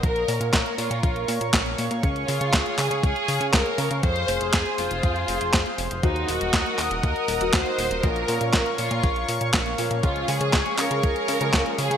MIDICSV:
0, 0, Header, 1, 6, 480
1, 0, Start_track
1, 0, Tempo, 500000
1, 32, Time_signature, 4, 2, 24, 8
1, 11492, End_track
2, 0, Start_track
2, 0, Title_t, "Analog synth pad"
2, 0, Program_c, 0, 89
2, 32, Note_on_c, 0, 70, 86
2, 32, Note_on_c, 0, 73, 76
2, 32, Note_on_c, 0, 77, 80
2, 33, Note_on_c, 0, 85, 92
2, 1933, Note_off_c, 0, 70, 0
2, 1951, Note_on_c, 0, 68, 84
2, 3834, Note_off_c, 0, 73, 0
2, 3834, Note_off_c, 0, 85, 0
2, 3852, Note_off_c, 0, 68, 0
2, 3869, Note_on_c, 0, 68, 85
2, 3870, Note_on_c, 0, 72, 76
2, 3871, Note_on_c, 0, 84, 91
2, 5754, Note_off_c, 0, 77, 0
2, 5771, Note_off_c, 0, 68, 0
2, 5772, Note_off_c, 0, 72, 0
2, 5772, Note_off_c, 0, 84, 0
2, 5794, Note_on_c, 0, 78, 78
2, 5795, Note_on_c, 0, 70, 83
2, 5795, Note_on_c, 0, 75, 76
2, 5796, Note_on_c, 0, 87, 93
2, 7694, Note_off_c, 0, 75, 0
2, 7694, Note_off_c, 0, 78, 0
2, 7695, Note_off_c, 0, 87, 0
2, 7710, Note_on_c, 0, 77, 79
2, 7711, Note_on_c, 0, 73, 76
2, 7712, Note_on_c, 0, 85, 93
2, 9595, Note_off_c, 0, 70, 0
2, 9613, Note_off_c, 0, 85, 0
2, 9635, Note_on_c, 0, 68, 84
2, 9635, Note_on_c, 0, 85, 92
2, 11492, Note_off_c, 0, 68, 0
2, 11492, Note_off_c, 0, 73, 0
2, 11492, Note_off_c, 0, 77, 0
2, 11492, Note_off_c, 0, 85, 0
2, 11492, End_track
3, 0, Start_track
3, 0, Title_t, "Violin section"
3, 0, Program_c, 1, 48
3, 33, Note_on_c, 1, 70, 113
3, 479, Note_off_c, 1, 70, 0
3, 512, Note_on_c, 1, 70, 96
3, 735, Note_off_c, 1, 70, 0
3, 753, Note_on_c, 1, 65, 88
3, 1232, Note_off_c, 1, 65, 0
3, 1951, Note_on_c, 1, 61, 87
3, 2175, Note_off_c, 1, 61, 0
3, 2189, Note_on_c, 1, 65, 96
3, 2670, Note_off_c, 1, 65, 0
3, 2671, Note_on_c, 1, 68, 98
3, 2899, Note_off_c, 1, 68, 0
3, 2910, Note_on_c, 1, 68, 105
3, 3358, Note_off_c, 1, 68, 0
3, 3393, Note_on_c, 1, 70, 104
3, 3872, Note_on_c, 1, 72, 115
3, 3873, Note_off_c, 1, 70, 0
3, 4318, Note_off_c, 1, 72, 0
3, 4355, Note_on_c, 1, 68, 101
3, 4592, Note_on_c, 1, 65, 95
3, 4594, Note_off_c, 1, 68, 0
3, 5513, Note_off_c, 1, 65, 0
3, 5792, Note_on_c, 1, 63, 87
3, 6015, Note_off_c, 1, 63, 0
3, 6029, Note_on_c, 1, 66, 97
3, 6505, Note_on_c, 1, 70, 99
3, 6510, Note_off_c, 1, 66, 0
3, 6737, Note_off_c, 1, 70, 0
3, 6749, Note_on_c, 1, 70, 109
3, 7197, Note_off_c, 1, 70, 0
3, 7228, Note_on_c, 1, 72, 113
3, 7709, Note_on_c, 1, 70, 112
3, 7710, Note_off_c, 1, 72, 0
3, 8177, Note_off_c, 1, 70, 0
3, 8189, Note_on_c, 1, 70, 95
3, 8414, Note_off_c, 1, 70, 0
3, 8430, Note_on_c, 1, 65, 90
3, 8878, Note_off_c, 1, 65, 0
3, 9633, Note_on_c, 1, 65, 94
3, 9856, Note_off_c, 1, 65, 0
3, 9876, Note_on_c, 1, 68, 98
3, 10354, Note_off_c, 1, 68, 0
3, 10357, Note_on_c, 1, 70, 98
3, 10587, Note_off_c, 1, 70, 0
3, 10599, Note_on_c, 1, 70, 110
3, 11277, Note_off_c, 1, 70, 0
3, 11319, Note_on_c, 1, 68, 104
3, 11492, Note_off_c, 1, 68, 0
3, 11492, End_track
4, 0, Start_track
4, 0, Title_t, "Grand piano"
4, 0, Program_c, 2, 0
4, 5791, Note_on_c, 2, 54, 89
4, 5791, Note_on_c, 2, 66, 101
4, 5792, Note_on_c, 2, 58, 77
4, 5792, Note_on_c, 2, 63, 77
4, 7083, Note_off_c, 2, 54, 0
4, 7083, Note_off_c, 2, 58, 0
4, 7083, Note_off_c, 2, 63, 0
4, 7083, Note_off_c, 2, 66, 0
4, 7113, Note_on_c, 2, 63, 80
4, 7114, Note_on_c, 2, 54, 84
4, 7114, Note_on_c, 2, 58, 77
4, 7114, Note_on_c, 2, 66, 97
4, 7684, Note_off_c, 2, 54, 0
4, 7684, Note_off_c, 2, 58, 0
4, 7684, Note_off_c, 2, 63, 0
4, 7684, Note_off_c, 2, 66, 0
4, 7712, Note_on_c, 2, 65, 97
4, 7713, Note_on_c, 2, 46, 87
4, 7713, Note_on_c, 2, 58, 79
4, 7713, Note_on_c, 2, 61, 82
4, 7714, Note_on_c, 2, 53, 79
4, 8883, Note_off_c, 2, 65, 0
4, 8884, Note_off_c, 2, 46, 0
4, 8884, Note_off_c, 2, 53, 0
4, 8884, Note_off_c, 2, 58, 0
4, 8884, Note_off_c, 2, 61, 0
4, 9393, Note_on_c, 2, 58, 75
4, 9393, Note_on_c, 2, 61, 75
4, 9393, Note_on_c, 2, 70, 91
4, 9394, Note_on_c, 2, 53, 82
4, 9604, Note_off_c, 2, 53, 0
4, 9604, Note_off_c, 2, 58, 0
4, 9604, Note_off_c, 2, 61, 0
4, 9604, Note_off_c, 2, 70, 0
4, 9633, Note_on_c, 2, 61, 80
4, 9634, Note_on_c, 2, 53, 90
4, 9634, Note_on_c, 2, 65, 95
4, 9635, Note_on_c, 2, 56, 82
4, 10924, Note_off_c, 2, 53, 0
4, 10924, Note_off_c, 2, 61, 0
4, 10924, Note_off_c, 2, 65, 0
4, 10925, Note_off_c, 2, 56, 0
4, 10953, Note_on_c, 2, 53, 87
4, 10953, Note_on_c, 2, 56, 77
4, 10953, Note_on_c, 2, 65, 95
4, 10954, Note_on_c, 2, 61, 81
4, 11492, Note_off_c, 2, 53, 0
4, 11492, Note_off_c, 2, 56, 0
4, 11492, Note_off_c, 2, 61, 0
4, 11492, Note_off_c, 2, 65, 0
4, 11492, End_track
5, 0, Start_track
5, 0, Title_t, "Analog synth bass"
5, 0, Program_c, 3, 38
5, 34, Note_on_c, 3, 34, 95
5, 243, Note_off_c, 3, 34, 0
5, 271, Note_on_c, 3, 46, 91
5, 377, Note_off_c, 3, 46, 0
5, 390, Note_on_c, 3, 46, 102
5, 496, Note_off_c, 3, 46, 0
5, 512, Note_on_c, 3, 34, 94
5, 617, Note_off_c, 3, 34, 0
5, 750, Note_on_c, 3, 46, 84
5, 856, Note_off_c, 3, 46, 0
5, 870, Note_on_c, 3, 46, 100
5, 976, Note_off_c, 3, 46, 0
5, 993, Note_on_c, 3, 34, 86
5, 1202, Note_off_c, 3, 34, 0
5, 1232, Note_on_c, 3, 46, 84
5, 1337, Note_off_c, 3, 46, 0
5, 1353, Note_on_c, 3, 46, 83
5, 1457, Note_off_c, 3, 46, 0
5, 1473, Note_on_c, 3, 34, 89
5, 1682, Note_off_c, 3, 34, 0
5, 1715, Note_on_c, 3, 46, 80
5, 1818, Note_off_c, 3, 46, 0
5, 1833, Note_on_c, 3, 46, 92
5, 1937, Note_off_c, 3, 46, 0
5, 1954, Note_on_c, 3, 37, 99
5, 2163, Note_off_c, 3, 37, 0
5, 2194, Note_on_c, 3, 49, 90
5, 2298, Note_off_c, 3, 49, 0
5, 2313, Note_on_c, 3, 49, 97
5, 2417, Note_off_c, 3, 49, 0
5, 2433, Note_on_c, 3, 37, 101
5, 2537, Note_off_c, 3, 37, 0
5, 2672, Note_on_c, 3, 49, 85
5, 2777, Note_off_c, 3, 49, 0
5, 2791, Note_on_c, 3, 49, 102
5, 2897, Note_off_c, 3, 49, 0
5, 2913, Note_on_c, 3, 37, 86
5, 3017, Note_off_c, 3, 37, 0
5, 3153, Note_on_c, 3, 49, 103
5, 3257, Note_off_c, 3, 49, 0
5, 3270, Note_on_c, 3, 49, 84
5, 3376, Note_off_c, 3, 49, 0
5, 3393, Note_on_c, 3, 37, 90
5, 3497, Note_off_c, 3, 37, 0
5, 3631, Note_on_c, 3, 49, 97
5, 3736, Note_off_c, 3, 49, 0
5, 3752, Note_on_c, 3, 49, 102
5, 3857, Note_off_c, 3, 49, 0
5, 3872, Note_on_c, 3, 41, 100
5, 4082, Note_off_c, 3, 41, 0
5, 4113, Note_on_c, 3, 29, 88
5, 4217, Note_off_c, 3, 29, 0
5, 4234, Note_on_c, 3, 29, 100
5, 4338, Note_off_c, 3, 29, 0
5, 4353, Note_on_c, 3, 41, 96
5, 4458, Note_off_c, 3, 41, 0
5, 4592, Note_on_c, 3, 29, 81
5, 4697, Note_off_c, 3, 29, 0
5, 4712, Note_on_c, 3, 29, 103
5, 4817, Note_off_c, 3, 29, 0
5, 4833, Note_on_c, 3, 41, 87
5, 5042, Note_off_c, 3, 41, 0
5, 5069, Note_on_c, 3, 29, 105
5, 5175, Note_off_c, 3, 29, 0
5, 5191, Note_on_c, 3, 29, 84
5, 5296, Note_off_c, 3, 29, 0
5, 5313, Note_on_c, 3, 41, 98
5, 5418, Note_off_c, 3, 41, 0
5, 5552, Note_on_c, 3, 29, 99
5, 5657, Note_off_c, 3, 29, 0
5, 5674, Note_on_c, 3, 29, 105
5, 5778, Note_off_c, 3, 29, 0
5, 5793, Note_on_c, 3, 39, 101
5, 6002, Note_off_c, 3, 39, 0
5, 6032, Note_on_c, 3, 27, 92
5, 6137, Note_off_c, 3, 27, 0
5, 6151, Note_on_c, 3, 27, 101
5, 6257, Note_off_c, 3, 27, 0
5, 6274, Note_on_c, 3, 39, 94
5, 6378, Note_off_c, 3, 39, 0
5, 6512, Note_on_c, 3, 27, 84
5, 6617, Note_off_c, 3, 27, 0
5, 6632, Note_on_c, 3, 27, 103
5, 6737, Note_off_c, 3, 27, 0
5, 6754, Note_on_c, 3, 39, 84
5, 6858, Note_off_c, 3, 39, 0
5, 6992, Note_on_c, 3, 27, 104
5, 7097, Note_off_c, 3, 27, 0
5, 7112, Note_on_c, 3, 27, 85
5, 7217, Note_off_c, 3, 27, 0
5, 7234, Note_on_c, 3, 39, 95
5, 7338, Note_off_c, 3, 39, 0
5, 7471, Note_on_c, 3, 27, 100
5, 7577, Note_off_c, 3, 27, 0
5, 7592, Note_on_c, 3, 27, 104
5, 7697, Note_off_c, 3, 27, 0
5, 7714, Note_on_c, 3, 34, 97
5, 7923, Note_off_c, 3, 34, 0
5, 7952, Note_on_c, 3, 46, 88
5, 8057, Note_off_c, 3, 46, 0
5, 8074, Note_on_c, 3, 46, 98
5, 8178, Note_off_c, 3, 46, 0
5, 8195, Note_on_c, 3, 34, 100
5, 8298, Note_off_c, 3, 34, 0
5, 8435, Note_on_c, 3, 46, 89
5, 8539, Note_off_c, 3, 46, 0
5, 8554, Note_on_c, 3, 46, 101
5, 8658, Note_off_c, 3, 46, 0
5, 8674, Note_on_c, 3, 34, 86
5, 8883, Note_off_c, 3, 34, 0
5, 8916, Note_on_c, 3, 46, 82
5, 9019, Note_off_c, 3, 46, 0
5, 9034, Note_on_c, 3, 46, 82
5, 9138, Note_off_c, 3, 46, 0
5, 9155, Note_on_c, 3, 34, 93
5, 9363, Note_off_c, 3, 34, 0
5, 9394, Note_on_c, 3, 46, 77
5, 9498, Note_off_c, 3, 46, 0
5, 9513, Note_on_c, 3, 46, 93
5, 9617, Note_off_c, 3, 46, 0
5, 9634, Note_on_c, 3, 37, 100
5, 9843, Note_off_c, 3, 37, 0
5, 9872, Note_on_c, 3, 49, 87
5, 9977, Note_off_c, 3, 49, 0
5, 9992, Note_on_c, 3, 49, 104
5, 10097, Note_off_c, 3, 49, 0
5, 10115, Note_on_c, 3, 37, 95
5, 10218, Note_off_c, 3, 37, 0
5, 10352, Note_on_c, 3, 49, 85
5, 10457, Note_off_c, 3, 49, 0
5, 10473, Note_on_c, 3, 49, 102
5, 10577, Note_off_c, 3, 49, 0
5, 10594, Note_on_c, 3, 37, 90
5, 10698, Note_off_c, 3, 37, 0
5, 10834, Note_on_c, 3, 49, 107
5, 10938, Note_off_c, 3, 49, 0
5, 10953, Note_on_c, 3, 49, 86
5, 11057, Note_off_c, 3, 49, 0
5, 11074, Note_on_c, 3, 37, 95
5, 11178, Note_off_c, 3, 37, 0
5, 11314, Note_on_c, 3, 49, 98
5, 11418, Note_off_c, 3, 49, 0
5, 11432, Note_on_c, 3, 49, 104
5, 11492, Note_off_c, 3, 49, 0
5, 11492, End_track
6, 0, Start_track
6, 0, Title_t, "Drums"
6, 33, Note_on_c, 9, 36, 122
6, 33, Note_on_c, 9, 42, 54
6, 129, Note_off_c, 9, 36, 0
6, 129, Note_off_c, 9, 42, 0
6, 153, Note_on_c, 9, 42, 27
6, 249, Note_off_c, 9, 42, 0
6, 272, Note_on_c, 9, 46, 106
6, 368, Note_off_c, 9, 46, 0
6, 392, Note_on_c, 9, 42, 53
6, 488, Note_off_c, 9, 42, 0
6, 513, Note_on_c, 9, 36, 125
6, 513, Note_on_c, 9, 38, 121
6, 513, Note_on_c, 9, 39, 90
6, 513, Note_on_c, 9, 42, 52
6, 609, Note_off_c, 9, 36, 0
6, 609, Note_off_c, 9, 38, 0
6, 609, Note_off_c, 9, 39, 0
6, 609, Note_off_c, 9, 42, 0
6, 633, Note_on_c, 9, 42, 27
6, 729, Note_off_c, 9, 42, 0
6, 752, Note_on_c, 9, 46, 101
6, 848, Note_off_c, 9, 46, 0
6, 873, Note_on_c, 9, 42, 54
6, 969, Note_off_c, 9, 42, 0
6, 993, Note_on_c, 9, 36, 123
6, 993, Note_on_c, 9, 42, 54
6, 1089, Note_off_c, 9, 36, 0
6, 1089, Note_off_c, 9, 42, 0
6, 1113, Note_on_c, 9, 42, 26
6, 1209, Note_off_c, 9, 42, 0
6, 1232, Note_on_c, 9, 46, 106
6, 1328, Note_off_c, 9, 46, 0
6, 1354, Note_on_c, 9, 42, 52
6, 1450, Note_off_c, 9, 42, 0
6, 1473, Note_on_c, 9, 36, 121
6, 1474, Note_on_c, 9, 38, 127
6, 1474, Note_on_c, 9, 39, 96
6, 1474, Note_on_c, 9, 42, 52
6, 1569, Note_off_c, 9, 36, 0
6, 1570, Note_off_c, 9, 38, 0
6, 1570, Note_off_c, 9, 39, 0
6, 1570, Note_off_c, 9, 42, 0
6, 1594, Note_on_c, 9, 42, 26
6, 1690, Note_off_c, 9, 42, 0
6, 1713, Note_on_c, 9, 46, 103
6, 1809, Note_off_c, 9, 46, 0
6, 1832, Note_on_c, 9, 42, 57
6, 1928, Note_off_c, 9, 42, 0
6, 1953, Note_on_c, 9, 36, 127
6, 1953, Note_on_c, 9, 42, 52
6, 2049, Note_off_c, 9, 36, 0
6, 2049, Note_off_c, 9, 42, 0
6, 2073, Note_on_c, 9, 42, 27
6, 2169, Note_off_c, 9, 42, 0
6, 2193, Note_on_c, 9, 46, 104
6, 2289, Note_off_c, 9, 46, 0
6, 2314, Note_on_c, 9, 42, 55
6, 2410, Note_off_c, 9, 42, 0
6, 2432, Note_on_c, 9, 38, 123
6, 2432, Note_on_c, 9, 39, 92
6, 2432, Note_on_c, 9, 42, 49
6, 2433, Note_on_c, 9, 36, 127
6, 2528, Note_off_c, 9, 38, 0
6, 2528, Note_off_c, 9, 39, 0
6, 2528, Note_off_c, 9, 42, 0
6, 2529, Note_off_c, 9, 36, 0
6, 2553, Note_on_c, 9, 42, 26
6, 2649, Note_off_c, 9, 42, 0
6, 2673, Note_on_c, 9, 39, 72
6, 2673, Note_on_c, 9, 46, 100
6, 2769, Note_off_c, 9, 39, 0
6, 2769, Note_off_c, 9, 46, 0
6, 2794, Note_on_c, 9, 42, 52
6, 2890, Note_off_c, 9, 42, 0
6, 2913, Note_on_c, 9, 36, 127
6, 2914, Note_on_c, 9, 42, 50
6, 3009, Note_off_c, 9, 36, 0
6, 3010, Note_off_c, 9, 42, 0
6, 3034, Note_on_c, 9, 42, 26
6, 3130, Note_off_c, 9, 42, 0
6, 3152, Note_on_c, 9, 46, 107
6, 3248, Note_off_c, 9, 46, 0
6, 3271, Note_on_c, 9, 42, 50
6, 3367, Note_off_c, 9, 42, 0
6, 3392, Note_on_c, 9, 38, 124
6, 3392, Note_on_c, 9, 39, 92
6, 3392, Note_on_c, 9, 42, 51
6, 3393, Note_on_c, 9, 36, 120
6, 3488, Note_off_c, 9, 38, 0
6, 3488, Note_off_c, 9, 39, 0
6, 3488, Note_off_c, 9, 42, 0
6, 3489, Note_off_c, 9, 36, 0
6, 3512, Note_on_c, 9, 42, 26
6, 3608, Note_off_c, 9, 42, 0
6, 3631, Note_on_c, 9, 46, 101
6, 3727, Note_off_c, 9, 46, 0
6, 3751, Note_on_c, 9, 42, 54
6, 3847, Note_off_c, 9, 42, 0
6, 3871, Note_on_c, 9, 42, 52
6, 3873, Note_on_c, 9, 36, 122
6, 3967, Note_off_c, 9, 42, 0
6, 3969, Note_off_c, 9, 36, 0
6, 3991, Note_on_c, 9, 42, 25
6, 4087, Note_off_c, 9, 42, 0
6, 4111, Note_on_c, 9, 46, 107
6, 4207, Note_off_c, 9, 46, 0
6, 4232, Note_on_c, 9, 42, 51
6, 4328, Note_off_c, 9, 42, 0
6, 4352, Note_on_c, 9, 38, 123
6, 4352, Note_on_c, 9, 39, 88
6, 4352, Note_on_c, 9, 42, 49
6, 4354, Note_on_c, 9, 36, 127
6, 4448, Note_off_c, 9, 38, 0
6, 4448, Note_off_c, 9, 39, 0
6, 4448, Note_off_c, 9, 42, 0
6, 4450, Note_off_c, 9, 36, 0
6, 4472, Note_on_c, 9, 42, 25
6, 4568, Note_off_c, 9, 42, 0
6, 4591, Note_on_c, 9, 46, 104
6, 4687, Note_off_c, 9, 46, 0
6, 4712, Note_on_c, 9, 42, 50
6, 4808, Note_off_c, 9, 42, 0
6, 4831, Note_on_c, 9, 42, 50
6, 4834, Note_on_c, 9, 36, 124
6, 4927, Note_off_c, 9, 42, 0
6, 4930, Note_off_c, 9, 36, 0
6, 4952, Note_on_c, 9, 42, 24
6, 5048, Note_off_c, 9, 42, 0
6, 5071, Note_on_c, 9, 46, 106
6, 5167, Note_off_c, 9, 46, 0
6, 5193, Note_on_c, 9, 42, 51
6, 5289, Note_off_c, 9, 42, 0
6, 5313, Note_on_c, 9, 36, 121
6, 5313, Note_on_c, 9, 38, 124
6, 5313, Note_on_c, 9, 39, 91
6, 5313, Note_on_c, 9, 42, 51
6, 5409, Note_off_c, 9, 36, 0
6, 5409, Note_off_c, 9, 38, 0
6, 5409, Note_off_c, 9, 39, 0
6, 5409, Note_off_c, 9, 42, 0
6, 5433, Note_on_c, 9, 42, 25
6, 5529, Note_off_c, 9, 42, 0
6, 5552, Note_on_c, 9, 46, 101
6, 5648, Note_off_c, 9, 46, 0
6, 5673, Note_on_c, 9, 42, 50
6, 5769, Note_off_c, 9, 42, 0
6, 5792, Note_on_c, 9, 42, 52
6, 5793, Note_on_c, 9, 36, 116
6, 5888, Note_off_c, 9, 42, 0
6, 5889, Note_off_c, 9, 36, 0
6, 5914, Note_on_c, 9, 42, 25
6, 6010, Note_off_c, 9, 42, 0
6, 6033, Note_on_c, 9, 46, 105
6, 6129, Note_off_c, 9, 46, 0
6, 6154, Note_on_c, 9, 42, 51
6, 6250, Note_off_c, 9, 42, 0
6, 6273, Note_on_c, 9, 36, 124
6, 6274, Note_on_c, 9, 38, 117
6, 6274, Note_on_c, 9, 39, 80
6, 6274, Note_on_c, 9, 42, 51
6, 6369, Note_off_c, 9, 36, 0
6, 6370, Note_off_c, 9, 38, 0
6, 6370, Note_off_c, 9, 39, 0
6, 6370, Note_off_c, 9, 42, 0
6, 6395, Note_on_c, 9, 42, 25
6, 6491, Note_off_c, 9, 42, 0
6, 6514, Note_on_c, 9, 39, 69
6, 6514, Note_on_c, 9, 46, 107
6, 6610, Note_off_c, 9, 39, 0
6, 6610, Note_off_c, 9, 46, 0
6, 6634, Note_on_c, 9, 42, 51
6, 6730, Note_off_c, 9, 42, 0
6, 6753, Note_on_c, 9, 42, 51
6, 6754, Note_on_c, 9, 36, 122
6, 6849, Note_off_c, 9, 42, 0
6, 6850, Note_off_c, 9, 36, 0
6, 6872, Note_on_c, 9, 42, 24
6, 6968, Note_off_c, 9, 42, 0
6, 6991, Note_on_c, 9, 46, 110
6, 7087, Note_off_c, 9, 46, 0
6, 7112, Note_on_c, 9, 42, 52
6, 7208, Note_off_c, 9, 42, 0
6, 7232, Note_on_c, 9, 38, 121
6, 7232, Note_on_c, 9, 39, 86
6, 7232, Note_on_c, 9, 42, 51
6, 7234, Note_on_c, 9, 36, 116
6, 7328, Note_off_c, 9, 38, 0
6, 7328, Note_off_c, 9, 39, 0
6, 7328, Note_off_c, 9, 42, 0
6, 7330, Note_off_c, 9, 36, 0
6, 7353, Note_on_c, 9, 42, 25
6, 7449, Note_off_c, 9, 42, 0
6, 7474, Note_on_c, 9, 46, 109
6, 7570, Note_off_c, 9, 46, 0
6, 7593, Note_on_c, 9, 42, 53
6, 7689, Note_off_c, 9, 42, 0
6, 7712, Note_on_c, 9, 42, 53
6, 7714, Note_on_c, 9, 36, 114
6, 7808, Note_off_c, 9, 42, 0
6, 7810, Note_off_c, 9, 36, 0
6, 7834, Note_on_c, 9, 42, 26
6, 7930, Note_off_c, 9, 42, 0
6, 7952, Note_on_c, 9, 46, 114
6, 8048, Note_off_c, 9, 46, 0
6, 8072, Note_on_c, 9, 42, 52
6, 8168, Note_off_c, 9, 42, 0
6, 8192, Note_on_c, 9, 38, 114
6, 8192, Note_on_c, 9, 39, 85
6, 8192, Note_on_c, 9, 42, 49
6, 8194, Note_on_c, 9, 36, 117
6, 8288, Note_off_c, 9, 38, 0
6, 8288, Note_off_c, 9, 39, 0
6, 8288, Note_off_c, 9, 42, 0
6, 8290, Note_off_c, 9, 36, 0
6, 8313, Note_on_c, 9, 42, 27
6, 8409, Note_off_c, 9, 42, 0
6, 8432, Note_on_c, 9, 46, 106
6, 8528, Note_off_c, 9, 46, 0
6, 8553, Note_on_c, 9, 42, 53
6, 8649, Note_off_c, 9, 42, 0
6, 8673, Note_on_c, 9, 42, 53
6, 8674, Note_on_c, 9, 36, 121
6, 8769, Note_off_c, 9, 42, 0
6, 8770, Note_off_c, 9, 36, 0
6, 8794, Note_on_c, 9, 42, 25
6, 8890, Note_off_c, 9, 42, 0
6, 8913, Note_on_c, 9, 46, 114
6, 9009, Note_off_c, 9, 46, 0
6, 9033, Note_on_c, 9, 42, 52
6, 9129, Note_off_c, 9, 42, 0
6, 9153, Note_on_c, 9, 38, 119
6, 9153, Note_on_c, 9, 39, 85
6, 9153, Note_on_c, 9, 42, 53
6, 9154, Note_on_c, 9, 36, 112
6, 9249, Note_off_c, 9, 38, 0
6, 9249, Note_off_c, 9, 39, 0
6, 9249, Note_off_c, 9, 42, 0
6, 9250, Note_off_c, 9, 36, 0
6, 9273, Note_on_c, 9, 42, 26
6, 9369, Note_off_c, 9, 42, 0
6, 9392, Note_on_c, 9, 46, 107
6, 9488, Note_off_c, 9, 46, 0
6, 9511, Note_on_c, 9, 42, 54
6, 9607, Note_off_c, 9, 42, 0
6, 9632, Note_on_c, 9, 42, 57
6, 9634, Note_on_c, 9, 36, 118
6, 9728, Note_off_c, 9, 42, 0
6, 9730, Note_off_c, 9, 36, 0
6, 9752, Note_on_c, 9, 42, 28
6, 9848, Note_off_c, 9, 42, 0
6, 9871, Note_on_c, 9, 46, 114
6, 9967, Note_off_c, 9, 46, 0
6, 9991, Note_on_c, 9, 42, 56
6, 10087, Note_off_c, 9, 42, 0
6, 10111, Note_on_c, 9, 38, 107
6, 10111, Note_on_c, 9, 39, 87
6, 10111, Note_on_c, 9, 42, 51
6, 10114, Note_on_c, 9, 36, 118
6, 10207, Note_off_c, 9, 38, 0
6, 10207, Note_off_c, 9, 39, 0
6, 10207, Note_off_c, 9, 42, 0
6, 10210, Note_off_c, 9, 36, 0
6, 10231, Note_on_c, 9, 42, 27
6, 10327, Note_off_c, 9, 42, 0
6, 10351, Note_on_c, 9, 39, 70
6, 10351, Note_on_c, 9, 46, 111
6, 10447, Note_off_c, 9, 39, 0
6, 10447, Note_off_c, 9, 46, 0
6, 10473, Note_on_c, 9, 42, 57
6, 10569, Note_off_c, 9, 42, 0
6, 10593, Note_on_c, 9, 42, 56
6, 10594, Note_on_c, 9, 36, 115
6, 10689, Note_off_c, 9, 42, 0
6, 10690, Note_off_c, 9, 36, 0
6, 10713, Note_on_c, 9, 42, 27
6, 10809, Note_off_c, 9, 42, 0
6, 10832, Note_on_c, 9, 46, 113
6, 10928, Note_off_c, 9, 46, 0
6, 10952, Note_on_c, 9, 42, 54
6, 11048, Note_off_c, 9, 42, 0
6, 11073, Note_on_c, 9, 38, 120
6, 11073, Note_on_c, 9, 39, 88
6, 11073, Note_on_c, 9, 42, 55
6, 11074, Note_on_c, 9, 36, 108
6, 11169, Note_off_c, 9, 38, 0
6, 11169, Note_off_c, 9, 39, 0
6, 11169, Note_off_c, 9, 42, 0
6, 11170, Note_off_c, 9, 36, 0
6, 11194, Note_on_c, 9, 42, 27
6, 11290, Note_off_c, 9, 42, 0
6, 11313, Note_on_c, 9, 46, 116
6, 11409, Note_off_c, 9, 46, 0
6, 11434, Note_on_c, 9, 42, 56
6, 11492, Note_off_c, 9, 42, 0
6, 11492, End_track
0, 0, End_of_file